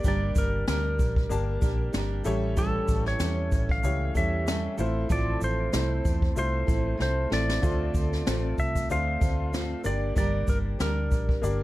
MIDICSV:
0, 0, Header, 1, 6, 480
1, 0, Start_track
1, 0, Tempo, 632244
1, 33, Time_signature, 4, 2, 24, 8
1, 8831, End_track
2, 0, Start_track
2, 0, Title_t, "Electric slide guitar"
2, 0, Program_c, 0, 29
2, 62, Note_on_c, 0, 74, 90
2, 291, Note_on_c, 0, 70, 74
2, 294, Note_off_c, 0, 74, 0
2, 518, Note_off_c, 0, 70, 0
2, 527, Note_on_c, 0, 70, 77
2, 1449, Note_off_c, 0, 70, 0
2, 1963, Note_on_c, 0, 69, 74
2, 2304, Note_off_c, 0, 69, 0
2, 2336, Note_on_c, 0, 73, 84
2, 2820, Note_on_c, 0, 77, 98
2, 2824, Note_off_c, 0, 73, 0
2, 3136, Note_off_c, 0, 77, 0
2, 3166, Note_on_c, 0, 76, 94
2, 3609, Note_off_c, 0, 76, 0
2, 3888, Note_on_c, 0, 74, 78
2, 4104, Note_off_c, 0, 74, 0
2, 4131, Note_on_c, 0, 72, 82
2, 4841, Note_off_c, 0, 72, 0
2, 4851, Note_on_c, 0, 72, 87
2, 5320, Note_off_c, 0, 72, 0
2, 5330, Note_on_c, 0, 72, 81
2, 5568, Note_off_c, 0, 72, 0
2, 5568, Note_on_c, 0, 74, 98
2, 6523, Note_off_c, 0, 74, 0
2, 6526, Note_on_c, 0, 76, 91
2, 6744, Note_off_c, 0, 76, 0
2, 6771, Note_on_c, 0, 77, 96
2, 7453, Note_off_c, 0, 77, 0
2, 7487, Note_on_c, 0, 74, 92
2, 7718, Note_off_c, 0, 74, 0
2, 7728, Note_on_c, 0, 74, 90
2, 7967, Note_on_c, 0, 70, 78
2, 7968, Note_off_c, 0, 74, 0
2, 8030, Note_off_c, 0, 70, 0
2, 8211, Note_on_c, 0, 70, 77
2, 8831, Note_off_c, 0, 70, 0
2, 8831, End_track
3, 0, Start_track
3, 0, Title_t, "Upright piano"
3, 0, Program_c, 1, 0
3, 0, Control_c, 1, 64, 127
3, 0, Note_on_c, 1, 58, 75
3, 0, Note_on_c, 1, 62, 63
3, 0, Note_on_c, 1, 67, 72
3, 0, Note_on_c, 1, 74, 84
3, 703, Note_off_c, 1, 58, 0
3, 705, Note_off_c, 1, 62, 0
3, 708, Note_off_c, 1, 67, 0
3, 710, Note_off_c, 1, 74, 0
3, 982, Note_on_c, 1, 58, 80
3, 985, Note_on_c, 1, 62, 72
3, 991, Note_on_c, 1, 67, 73
3, 998, Note_on_c, 1, 81, 85
3, 1702, Note_off_c, 1, 67, 0
3, 1704, Note_on_c, 1, 57, 90
3, 1707, Note_off_c, 1, 58, 0
3, 1709, Note_off_c, 1, 62, 0
3, 1710, Note_on_c, 1, 64, 79
3, 1714, Note_on_c, 1, 67, 87
3, 1715, Note_off_c, 1, 81, 0
3, 1720, Note_on_c, 1, 73, 98
3, 1722, Control_c, 1, 64, 0
3, 1854, Control_c, 1, 64, 127
3, 2624, Note_off_c, 1, 57, 0
3, 2627, Note_off_c, 1, 64, 0
3, 2629, Note_off_c, 1, 67, 0
3, 2632, Note_off_c, 1, 73, 0
3, 2906, Note_on_c, 1, 57, 77
3, 2913, Note_on_c, 1, 52, 72
3, 2918, Note_on_c, 1, 67, 70
3, 2921, Note_on_c, 1, 73, 90
3, 3618, Note_off_c, 1, 57, 0
3, 3629, Note_on_c, 1, 57, 75
3, 3633, Note_off_c, 1, 52, 0
3, 3634, Note_on_c, 1, 64, 72
3, 3635, Note_off_c, 1, 67, 0
3, 3636, Note_off_c, 1, 73, 0
3, 3641, Note_on_c, 1, 65, 65
3, 3642, Control_c, 1, 64, 0
3, 3646, Note_on_c, 1, 72, 84
3, 3777, Control_c, 1, 64, 127
3, 4547, Note_off_c, 1, 57, 0
3, 4550, Note_off_c, 1, 64, 0
3, 4553, Note_off_c, 1, 65, 0
3, 4555, Note_off_c, 1, 72, 0
3, 4827, Note_on_c, 1, 57, 82
3, 4833, Note_on_c, 1, 64, 70
3, 4837, Note_on_c, 1, 65, 70
3, 4843, Note_on_c, 1, 72, 85
3, 5746, Note_off_c, 1, 57, 0
3, 5749, Note_off_c, 1, 64, 0
3, 5751, Note_off_c, 1, 65, 0
3, 5754, Note_off_c, 1, 72, 0
3, 5789, Note_on_c, 1, 57, 69
3, 5791, Note_on_c, 1, 62, 62
3, 5797, Note_on_c, 1, 65, 66
3, 5802, Note_on_c, 1, 72, 74
3, 5804, Control_c, 1, 64, 0
3, 5928, Control_c, 1, 64, 127
3, 6708, Note_off_c, 1, 57, 0
3, 6709, Note_off_c, 1, 62, 0
3, 6711, Note_off_c, 1, 65, 0
3, 6714, Note_off_c, 1, 72, 0
3, 6753, Note_on_c, 1, 57, 81
3, 6757, Note_on_c, 1, 62, 71
3, 6763, Note_on_c, 1, 65, 76
3, 6765, Note_on_c, 1, 72, 84
3, 7463, Note_off_c, 1, 62, 0
3, 7473, Note_on_c, 1, 58, 73
3, 7474, Note_off_c, 1, 57, 0
3, 7474, Note_on_c, 1, 62, 67
3, 7479, Note_off_c, 1, 65, 0
3, 7480, Note_off_c, 1, 72, 0
3, 7482, Note_on_c, 1, 67, 78
3, 7483, Control_c, 1, 64, 0
3, 7485, Note_on_c, 1, 74, 89
3, 7631, Control_c, 1, 64, 127
3, 8390, Note_off_c, 1, 58, 0
3, 8391, Note_off_c, 1, 62, 0
3, 8395, Note_off_c, 1, 67, 0
3, 8396, Note_off_c, 1, 74, 0
3, 8668, Note_on_c, 1, 58, 80
3, 8673, Note_on_c, 1, 62, 71
3, 8680, Note_on_c, 1, 67, 70
3, 8684, Note_on_c, 1, 74, 89
3, 8831, Note_off_c, 1, 58, 0
3, 8831, Note_off_c, 1, 62, 0
3, 8831, Note_off_c, 1, 67, 0
3, 8831, Note_off_c, 1, 74, 0
3, 8831, End_track
4, 0, Start_track
4, 0, Title_t, "Steel-string acoustic guitar"
4, 0, Program_c, 2, 25
4, 33, Note_on_c, 2, 55, 80
4, 37, Note_on_c, 2, 62, 80
4, 41, Note_on_c, 2, 67, 86
4, 43, Note_on_c, 2, 70, 73
4, 508, Note_off_c, 2, 55, 0
4, 509, Note_off_c, 2, 62, 0
4, 511, Note_on_c, 2, 55, 54
4, 518, Note_off_c, 2, 70, 0
4, 518, Note_on_c, 2, 62, 57
4, 521, Note_off_c, 2, 67, 0
4, 524, Note_on_c, 2, 67, 64
4, 529, Note_on_c, 2, 70, 57
4, 1215, Note_off_c, 2, 70, 0
4, 1224, Note_on_c, 2, 70, 58
4, 1232, Note_off_c, 2, 67, 0
4, 1233, Note_off_c, 2, 62, 0
4, 1235, Note_on_c, 2, 67, 53
4, 1242, Note_on_c, 2, 62, 45
4, 1459, Note_off_c, 2, 55, 0
4, 1462, Note_off_c, 2, 62, 0
4, 1462, Note_on_c, 2, 55, 64
4, 1468, Note_off_c, 2, 67, 0
4, 1468, Note_off_c, 2, 70, 0
4, 1471, Note_on_c, 2, 62, 65
4, 1477, Note_on_c, 2, 67, 58
4, 1480, Note_on_c, 2, 70, 69
4, 1700, Note_off_c, 2, 67, 0
4, 1704, Note_off_c, 2, 70, 0
4, 1707, Note_off_c, 2, 55, 0
4, 1707, Note_on_c, 2, 69, 70
4, 1709, Note_on_c, 2, 67, 57
4, 1712, Note_off_c, 2, 62, 0
4, 1718, Note_on_c, 2, 61, 56
4, 1724, Note_on_c, 2, 55, 53
4, 1940, Note_off_c, 2, 55, 0
4, 1943, Note_off_c, 2, 61, 0
4, 1947, Note_off_c, 2, 67, 0
4, 1947, Note_on_c, 2, 45, 80
4, 1948, Note_on_c, 2, 52, 83
4, 1949, Note_on_c, 2, 55, 82
4, 1950, Note_off_c, 2, 69, 0
4, 1952, Note_on_c, 2, 61, 77
4, 1956, Note_on_c, 2, 67, 79
4, 1959, Note_on_c, 2, 69, 89
4, 2413, Note_off_c, 2, 55, 0
4, 2422, Note_on_c, 2, 55, 60
4, 2423, Note_off_c, 2, 61, 0
4, 2426, Note_off_c, 2, 67, 0
4, 2430, Note_off_c, 2, 45, 0
4, 2432, Note_on_c, 2, 61, 63
4, 2436, Note_on_c, 2, 67, 60
4, 2437, Note_off_c, 2, 69, 0
4, 2440, Note_on_c, 2, 69, 65
4, 3145, Note_off_c, 2, 69, 0
4, 3147, Note_off_c, 2, 55, 0
4, 3148, Note_off_c, 2, 67, 0
4, 3148, Note_on_c, 2, 69, 48
4, 3152, Note_off_c, 2, 61, 0
4, 3157, Note_on_c, 2, 67, 45
4, 3163, Note_on_c, 2, 61, 39
4, 3168, Note_on_c, 2, 55, 43
4, 3376, Note_off_c, 2, 55, 0
4, 3385, Note_on_c, 2, 55, 49
4, 3386, Note_off_c, 2, 61, 0
4, 3390, Note_off_c, 2, 69, 0
4, 3392, Note_off_c, 2, 67, 0
4, 3395, Note_on_c, 2, 61, 60
4, 3401, Note_on_c, 2, 67, 64
4, 3407, Note_on_c, 2, 69, 65
4, 3615, Note_off_c, 2, 69, 0
4, 3625, Note_on_c, 2, 69, 53
4, 3629, Note_off_c, 2, 55, 0
4, 3629, Note_off_c, 2, 67, 0
4, 3632, Note_on_c, 2, 64, 56
4, 3634, Note_off_c, 2, 61, 0
4, 3639, Note_on_c, 2, 60, 42
4, 3644, Note_on_c, 2, 57, 41
4, 3863, Note_off_c, 2, 52, 0
4, 3863, Note_off_c, 2, 57, 0
4, 3863, Note_off_c, 2, 60, 0
4, 3864, Note_on_c, 2, 45, 82
4, 3866, Note_off_c, 2, 64, 0
4, 3866, Note_on_c, 2, 53, 81
4, 3867, Note_off_c, 2, 69, 0
4, 3872, Note_on_c, 2, 57, 84
4, 3872, Note_on_c, 2, 60, 79
4, 3875, Note_on_c, 2, 64, 86
4, 3876, Note_on_c, 2, 69, 85
4, 4341, Note_off_c, 2, 57, 0
4, 4344, Note_on_c, 2, 57, 56
4, 4348, Note_off_c, 2, 45, 0
4, 4348, Note_off_c, 2, 60, 0
4, 4349, Note_off_c, 2, 64, 0
4, 4351, Note_on_c, 2, 60, 59
4, 4358, Note_on_c, 2, 64, 59
4, 4360, Note_off_c, 2, 69, 0
4, 4363, Note_on_c, 2, 69, 59
4, 4381, Note_off_c, 2, 53, 0
4, 5057, Note_off_c, 2, 69, 0
4, 5060, Note_off_c, 2, 64, 0
4, 5060, Note_on_c, 2, 69, 49
4, 5069, Note_on_c, 2, 64, 53
4, 5070, Note_off_c, 2, 60, 0
4, 5073, Note_on_c, 2, 60, 37
4, 5077, Note_off_c, 2, 57, 0
4, 5080, Note_on_c, 2, 57, 42
4, 5286, Note_off_c, 2, 57, 0
4, 5294, Note_off_c, 2, 60, 0
4, 5295, Note_on_c, 2, 57, 57
4, 5300, Note_off_c, 2, 64, 0
4, 5303, Note_on_c, 2, 60, 53
4, 5305, Note_off_c, 2, 69, 0
4, 5309, Note_on_c, 2, 64, 52
4, 5314, Note_on_c, 2, 69, 62
4, 5533, Note_off_c, 2, 69, 0
4, 5540, Note_off_c, 2, 64, 0
4, 5542, Note_on_c, 2, 69, 58
4, 5544, Note_off_c, 2, 57, 0
4, 5546, Note_off_c, 2, 60, 0
4, 5549, Note_on_c, 2, 64, 48
4, 5555, Note_on_c, 2, 60, 43
4, 5561, Note_on_c, 2, 57, 42
4, 5774, Note_off_c, 2, 57, 0
4, 5778, Note_off_c, 2, 60, 0
4, 5779, Note_on_c, 2, 50, 73
4, 5782, Note_off_c, 2, 69, 0
4, 5783, Note_on_c, 2, 57, 72
4, 5787, Note_off_c, 2, 64, 0
4, 5787, Note_on_c, 2, 60, 89
4, 5790, Note_on_c, 2, 65, 78
4, 5791, Note_on_c, 2, 69, 90
4, 6258, Note_off_c, 2, 57, 0
4, 6264, Note_off_c, 2, 60, 0
4, 6267, Note_on_c, 2, 57, 60
4, 6269, Note_off_c, 2, 65, 0
4, 6272, Note_off_c, 2, 69, 0
4, 6273, Note_on_c, 2, 60, 70
4, 6278, Note_on_c, 2, 65, 69
4, 6283, Note_on_c, 2, 69, 68
4, 6296, Note_off_c, 2, 50, 0
4, 6982, Note_off_c, 2, 69, 0
4, 6990, Note_off_c, 2, 65, 0
4, 6991, Note_off_c, 2, 57, 0
4, 6991, Note_on_c, 2, 69, 49
4, 6993, Note_off_c, 2, 60, 0
4, 6999, Note_on_c, 2, 65, 43
4, 7009, Note_on_c, 2, 60, 43
4, 7230, Note_off_c, 2, 60, 0
4, 7232, Note_off_c, 2, 69, 0
4, 7233, Note_on_c, 2, 57, 51
4, 7237, Note_off_c, 2, 65, 0
4, 7239, Note_on_c, 2, 60, 59
4, 7245, Note_on_c, 2, 65, 63
4, 7252, Note_on_c, 2, 69, 66
4, 7467, Note_off_c, 2, 69, 0
4, 7470, Note_on_c, 2, 70, 52
4, 7473, Note_off_c, 2, 57, 0
4, 7477, Note_off_c, 2, 60, 0
4, 7477, Note_off_c, 2, 65, 0
4, 7480, Note_on_c, 2, 67, 49
4, 7488, Note_on_c, 2, 62, 47
4, 7707, Note_off_c, 2, 62, 0
4, 7709, Note_on_c, 2, 55, 80
4, 7710, Note_off_c, 2, 67, 0
4, 7712, Note_off_c, 2, 70, 0
4, 7716, Note_on_c, 2, 62, 77
4, 7719, Note_on_c, 2, 67, 90
4, 7726, Note_on_c, 2, 70, 88
4, 8189, Note_off_c, 2, 55, 0
4, 8190, Note_off_c, 2, 62, 0
4, 8192, Note_on_c, 2, 55, 59
4, 8199, Note_on_c, 2, 62, 58
4, 8200, Note_off_c, 2, 70, 0
4, 8202, Note_off_c, 2, 67, 0
4, 8205, Note_on_c, 2, 67, 60
4, 8209, Note_on_c, 2, 70, 70
4, 8831, Note_off_c, 2, 55, 0
4, 8831, Note_off_c, 2, 62, 0
4, 8831, Note_off_c, 2, 67, 0
4, 8831, Note_off_c, 2, 70, 0
4, 8831, End_track
5, 0, Start_track
5, 0, Title_t, "Fingered electric bass"
5, 0, Program_c, 3, 33
5, 34, Note_on_c, 3, 31, 98
5, 231, Note_off_c, 3, 31, 0
5, 271, Note_on_c, 3, 31, 106
5, 469, Note_off_c, 3, 31, 0
5, 517, Note_on_c, 3, 38, 105
5, 753, Note_on_c, 3, 34, 84
5, 764, Note_off_c, 3, 38, 0
5, 950, Note_off_c, 3, 34, 0
5, 993, Note_on_c, 3, 31, 94
5, 1190, Note_off_c, 3, 31, 0
5, 1230, Note_on_c, 3, 34, 84
5, 1428, Note_off_c, 3, 34, 0
5, 1475, Note_on_c, 3, 31, 87
5, 1671, Note_off_c, 3, 31, 0
5, 1715, Note_on_c, 3, 33, 99
5, 2107, Note_off_c, 3, 33, 0
5, 2192, Note_on_c, 3, 33, 90
5, 2389, Note_off_c, 3, 33, 0
5, 2429, Note_on_c, 3, 40, 98
5, 2673, Note_on_c, 3, 33, 84
5, 2685, Note_off_c, 3, 40, 0
5, 2870, Note_off_c, 3, 33, 0
5, 2912, Note_on_c, 3, 37, 105
5, 3109, Note_off_c, 3, 37, 0
5, 3151, Note_on_c, 3, 40, 87
5, 3545, Note_off_c, 3, 40, 0
5, 3635, Note_on_c, 3, 33, 93
5, 3830, Note_off_c, 3, 33, 0
5, 3872, Note_on_c, 3, 33, 94
5, 4069, Note_off_c, 3, 33, 0
5, 4113, Note_on_c, 3, 33, 96
5, 4310, Note_off_c, 3, 33, 0
5, 4359, Note_on_c, 3, 36, 106
5, 4553, Note_off_c, 3, 36, 0
5, 4596, Note_on_c, 3, 40, 76
5, 4791, Note_off_c, 3, 40, 0
5, 4836, Note_on_c, 3, 36, 92
5, 5031, Note_off_c, 3, 36, 0
5, 5072, Note_on_c, 3, 33, 82
5, 5269, Note_off_c, 3, 33, 0
5, 5314, Note_on_c, 3, 36, 79
5, 5511, Note_off_c, 3, 36, 0
5, 5554, Note_on_c, 3, 33, 93
5, 5750, Note_off_c, 3, 33, 0
5, 5796, Note_on_c, 3, 38, 94
5, 5991, Note_off_c, 3, 38, 0
5, 6032, Note_on_c, 3, 38, 104
5, 6229, Note_off_c, 3, 38, 0
5, 6276, Note_on_c, 3, 33, 99
5, 6472, Note_off_c, 3, 33, 0
5, 6514, Note_on_c, 3, 36, 85
5, 6710, Note_off_c, 3, 36, 0
5, 6760, Note_on_c, 3, 38, 86
5, 6954, Note_off_c, 3, 38, 0
5, 6997, Note_on_c, 3, 38, 89
5, 7390, Note_off_c, 3, 38, 0
5, 7480, Note_on_c, 3, 31, 93
5, 7674, Note_off_c, 3, 31, 0
5, 7716, Note_on_c, 3, 31, 110
5, 7912, Note_off_c, 3, 31, 0
5, 7954, Note_on_c, 3, 31, 92
5, 8151, Note_off_c, 3, 31, 0
5, 8202, Note_on_c, 3, 38, 112
5, 8442, Note_off_c, 3, 38, 0
5, 8442, Note_on_c, 3, 34, 85
5, 8636, Note_off_c, 3, 34, 0
5, 8681, Note_on_c, 3, 31, 101
5, 8831, Note_off_c, 3, 31, 0
5, 8831, End_track
6, 0, Start_track
6, 0, Title_t, "Drums"
6, 31, Note_on_c, 9, 82, 71
6, 34, Note_on_c, 9, 36, 97
6, 107, Note_off_c, 9, 82, 0
6, 110, Note_off_c, 9, 36, 0
6, 270, Note_on_c, 9, 82, 59
6, 272, Note_on_c, 9, 36, 91
6, 346, Note_off_c, 9, 82, 0
6, 348, Note_off_c, 9, 36, 0
6, 513, Note_on_c, 9, 38, 107
6, 515, Note_on_c, 9, 82, 70
6, 589, Note_off_c, 9, 38, 0
6, 591, Note_off_c, 9, 82, 0
6, 754, Note_on_c, 9, 36, 87
6, 754, Note_on_c, 9, 82, 43
6, 830, Note_off_c, 9, 36, 0
6, 830, Note_off_c, 9, 82, 0
6, 884, Note_on_c, 9, 36, 96
6, 960, Note_off_c, 9, 36, 0
6, 992, Note_on_c, 9, 82, 68
6, 1068, Note_off_c, 9, 82, 0
6, 1228, Note_on_c, 9, 82, 54
6, 1230, Note_on_c, 9, 36, 95
6, 1304, Note_off_c, 9, 82, 0
6, 1306, Note_off_c, 9, 36, 0
6, 1471, Note_on_c, 9, 82, 66
6, 1474, Note_on_c, 9, 38, 104
6, 1547, Note_off_c, 9, 82, 0
6, 1549, Note_off_c, 9, 38, 0
6, 1705, Note_on_c, 9, 82, 57
6, 1781, Note_off_c, 9, 82, 0
6, 1951, Note_on_c, 9, 36, 96
6, 1951, Note_on_c, 9, 82, 75
6, 2027, Note_off_c, 9, 36, 0
6, 2027, Note_off_c, 9, 82, 0
6, 2187, Note_on_c, 9, 82, 62
6, 2190, Note_on_c, 9, 36, 93
6, 2263, Note_off_c, 9, 82, 0
6, 2266, Note_off_c, 9, 36, 0
6, 2322, Note_on_c, 9, 38, 36
6, 2398, Note_off_c, 9, 38, 0
6, 2427, Note_on_c, 9, 38, 111
6, 2429, Note_on_c, 9, 82, 71
6, 2503, Note_off_c, 9, 38, 0
6, 2505, Note_off_c, 9, 82, 0
6, 2671, Note_on_c, 9, 82, 42
6, 2673, Note_on_c, 9, 36, 89
6, 2747, Note_off_c, 9, 82, 0
6, 2749, Note_off_c, 9, 36, 0
6, 2803, Note_on_c, 9, 36, 99
6, 2879, Note_off_c, 9, 36, 0
6, 2912, Note_on_c, 9, 82, 68
6, 2988, Note_off_c, 9, 82, 0
6, 3153, Note_on_c, 9, 36, 86
6, 3153, Note_on_c, 9, 82, 55
6, 3229, Note_off_c, 9, 36, 0
6, 3229, Note_off_c, 9, 82, 0
6, 3398, Note_on_c, 9, 82, 67
6, 3400, Note_on_c, 9, 38, 104
6, 3473, Note_off_c, 9, 82, 0
6, 3476, Note_off_c, 9, 38, 0
6, 3630, Note_on_c, 9, 82, 59
6, 3706, Note_off_c, 9, 82, 0
6, 3873, Note_on_c, 9, 36, 93
6, 3873, Note_on_c, 9, 82, 72
6, 3948, Note_off_c, 9, 36, 0
6, 3949, Note_off_c, 9, 82, 0
6, 4108, Note_on_c, 9, 82, 57
6, 4184, Note_off_c, 9, 82, 0
6, 4352, Note_on_c, 9, 38, 119
6, 4353, Note_on_c, 9, 82, 68
6, 4428, Note_off_c, 9, 38, 0
6, 4429, Note_off_c, 9, 82, 0
6, 4595, Note_on_c, 9, 36, 86
6, 4596, Note_on_c, 9, 82, 49
6, 4671, Note_off_c, 9, 36, 0
6, 4671, Note_off_c, 9, 82, 0
6, 4724, Note_on_c, 9, 36, 93
6, 4800, Note_off_c, 9, 36, 0
6, 4833, Note_on_c, 9, 82, 69
6, 4909, Note_off_c, 9, 82, 0
6, 5073, Note_on_c, 9, 36, 94
6, 5075, Note_on_c, 9, 82, 54
6, 5149, Note_off_c, 9, 36, 0
6, 5151, Note_off_c, 9, 82, 0
6, 5316, Note_on_c, 9, 38, 56
6, 5392, Note_off_c, 9, 38, 0
6, 5556, Note_on_c, 9, 38, 88
6, 5632, Note_off_c, 9, 38, 0
6, 5689, Note_on_c, 9, 38, 93
6, 5765, Note_off_c, 9, 38, 0
6, 5794, Note_on_c, 9, 36, 100
6, 5796, Note_on_c, 9, 82, 69
6, 5870, Note_off_c, 9, 36, 0
6, 5872, Note_off_c, 9, 82, 0
6, 6032, Note_on_c, 9, 36, 92
6, 6032, Note_on_c, 9, 82, 55
6, 6108, Note_off_c, 9, 36, 0
6, 6108, Note_off_c, 9, 82, 0
6, 6170, Note_on_c, 9, 38, 33
6, 6246, Note_off_c, 9, 38, 0
6, 6278, Note_on_c, 9, 38, 113
6, 6280, Note_on_c, 9, 82, 70
6, 6354, Note_off_c, 9, 38, 0
6, 6356, Note_off_c, 9, 82, 0
6, 6516, Note_on_c, 9, 36, 87
6, 6517, Note_on_c, 9, 82, 45
6, 6592, Note_off_c, 9, 36, 0
6, 6592, Note_off_c, 9, 82, 0
6, 6647, Note_on_c, 9, 36, 91
6, 6651, Note_on_c, 9, 82, 57
6, 6723, Note_off_c, 9, 36, 0
6, 6726, Note_off_c, 9, 82, 0
6, 6758, Note_on_c, 9, 82, 64
6, 6834, Note_off_c, 9, 82, 0
6, 6996, Note_on_c, 9, 36, 97
6, 6998, Note_on_c, 9, 82, 58
6, 7072, Note_off_c, 9, 36, 0
6, 7074, Note_off_c, 9, 82, 0
6, 7242, Note_on_c, 9, 82, 65
6, 7244, Note_on_c, 9, 38, 106
6, 7318, Note_off_c, 9, 82, 0
6, 7320, Note_off_c, 9, 38, 0
6, 7474, Note_on_c, 9, 82, 61
6, 7549, Note_off_c, 9, 82, 0
6, 7717, Note_on_c, 9, 36, 103
6, 7719, Note_on_c, 9, 82, 73
6, 7793, Note_off_c, 9, 36, 0
6, 7795, Note_off_c, 9, 82, 0
6, 7952, Note_on_c, 9, 82, 57
6, 7955, Note_on_c, 9, 36, 92
6, 8028, Note_off_c, 9, 82, 0
6, 8031, Note_off_c, 9, 36, 0
6, 8201, Note_on_c, 9, 38, 115
6, 8203, Note_on_c, 9, 82, 68
6, 8277, Note_off_c, 9, 38, 0
6, 8279, Note_off_c, 9, 82, 0
6, 8438, Note_on_c, 9, 82, 45
6, 8440, Note_on_c, 9, 36, 90
6, 8514, Note_off_c, 9, 82, 0
6, 8516, Note_off_c, 9, 36, 0
6, 8571, Note_on_c, 9, 36, 95
6, 8647, Note_off_c, 9, 36, 0
6, 8683, Note_on_c, 9, 82, 65
6, 8759, Note_off_c, 9, 82, 0
6, 8831, End_track
0, 0, End_of_file